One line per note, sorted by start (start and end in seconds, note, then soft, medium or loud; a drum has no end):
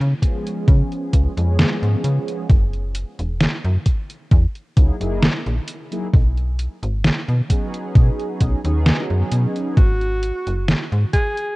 0.00 0.14 C#3 loud
0.00 closed hi-hat soft
0.21 1.31 F3 medium
0.21 1.31 G#3 medium
0.21 1.31 B3 medium
0.21 1.32 C#4 medium
0.21 1.32 G#4 medium
0.21 kick medium
0.21 closed hi-hat loud
0.47 closed hi-hat medium
0.68 0.83 C#3 medium
0.68 kick loud
0.68 closed hi-hat medium
0.92 closed hi-hat soft
1.13 1.28 C#2 medium
1.13 kick medium
1.13 closed hi-hat medium
1.36 1.64 F2 medium
1.36 2.46 F3 medium
1.36 2.47 G#3 medium
1.36 2.47 B3 medium
1.36 2.48 C#4 medium
1.36 2.48 G#4 loud
1.36 closed hi-hat medium
1.59 snare loud
1.59 closed hi-hat medium
1.82 1.96 G#2 medium
1.82 closed hi-hat soft
2.04 2.19 C#3 medium
2.04 closed hi-hat medium
2.28 closed hi-hat medium
2.49 3.04 F#1 loud
2.49 kick loud
2.49 closed hi-hat medium
2.73 closed hi-hat soft
2.95 closed hi-hat medium
3.19 3.46 E1 medium
3.19 closed hi-hat medium
3.41 snare loud
3.41 closed hi-hat medium
3.64 3.78 F#2 loud
3.64 closed hi-hat soft
3.86 kick medium
3.86 closed hi-hat medium
4.10 closed hi-hat medium
4.31 4.46 E2 loud
4.31 kick loud
4.31 closed hi-hat medium
4.55 closed hi-hat soft
4.76 4.92 C#2 medium
4.76 4.95 F#3 medium
4.76 4.95 A#3 medium
4.76 4.95 D#4 medium
4.76 4.95 E4 medium
4.76 4.96 G#4 medium
4.76 kick loud
4.76 closed hi-hat loud
5.00 5.28 F#1 medium
5.00 5.25 F#3 loud
5.00 5.25 A#3 medium
5.00 5.25 D#4 medium
5.00 5.26 E4 medium
5.00 5.26 G#4 loud
5.00 closed hi-hat medium
5.23 snare loud
5.23 closed hi-hat soft
5.46 5.60 A#1 medium
5.46 closed hi-hat soft
5.68 closed hi-hat medium
5.91 6.07 F#3 medium
5.91 6.07 A#3 medium
5.91 6.07 D#4 medium
5.91 6.07 E4 medium
5.91 6.07 G#4 loud
5.91 closed hi-hat medium
6.13 6.68 B1 loud
6.13 kick loud
6.13 closed hi-hat medium
6.37 closed hi-hat soft
6.59 closed hi-hat medium
6.83 7.10 G#1 medium
6.83 closed hi-hat medium
7.04 snare loud
7.04 closed hi-hat medium
7.28 7.42 B2 medium
7.28 closed hi-hat soft
7.48 8.58 F#3 medium
7.48 8.59 B3 medium
7.48 8.59 C#4 medium
7.48 8.59 D#4 medium
7.48 8.60 G#4 medium
7.48 kick medium
7.48 closed hi-hat loud
7.74 closed hi-hat medium
7.95 8.10 B2 medium
7.95 kick loud
7.95 closed hi-hat medium
8.20 closed hi-hat soft
8.41 8.55 B1 medium
8.41 kick medium
8.41 closed hi-hat medium
8.63 8.92 D#2 medium
8.63 9.74 F#3 medium
8.63 9.74 B3 medium
8.63 9.75 C#4 medium
8.63 9.75 D#4 medium
8.63 9.75 G#4 loud
8.63 closed hi-hat soft
8.86 snare loud
8.86 closed hi-hat medium
9.10 9.23 F#2 medium
9.10 closed hi-hat soft
9.32 9.46 B2 medium
9.32 closed hi-hat medium
9.56 closed hi-hat soft
9.77 10.32 G#1 loud
9.77 10.64 F#4 loud
9.77 kick loud
9.77 closed hi-hat soft
10.01 closed hi-hat soft
10.23 closed hi-hat medium
10.47 10.74 F#1 medium
10.47 closed hi-hat soft
10.68 snare loud
10.68 closed hi-hat medium
10.92 11.05 G#2 medium
10.92 closed hi-hat soft
11.13 11.56 G#4 loud
11.13 kick medium
11.13 closed hi-hat medium
11.37 closed hi-hat medium